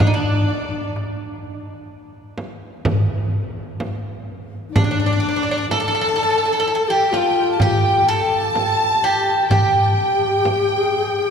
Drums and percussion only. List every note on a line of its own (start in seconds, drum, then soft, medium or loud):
0.00 frame drum loud
0.00 darbuka dum loud
0.96 darbuka tek medium
1.44 darbuka ka soft
2.15 darbuka ka soft
2.38 darbuka tek medium
2.38 frame drum medium
2.85 frame drum loud
2.85 darbuka dum medium
3.80 darbuka tek medium
3.80 frame drum medium
4.05 darbuka ka soft
4.29 darbuka ka soft
4.76 darbuka dum medium
4.76 frame drum medium
5.24 darbuka ka soft
5.71 darbuka tek medium
5.71 frame drum medium
6.19 darbuka ka soft
6.90 darbuka ka soft
7.13 darbuka tek medium
7.13 frame drum medium
7.60 frame drum medium
7.60 darbuka dum medium
8.09 darbuka ka soft
8.55 darbuka tek medium
8.55 frame drum medium
9.03 darbuka ka soft
9.50 darbuka dum loud
9.50 frame drum medium
10.45 frame drum medium
10.93 darbuka ka soft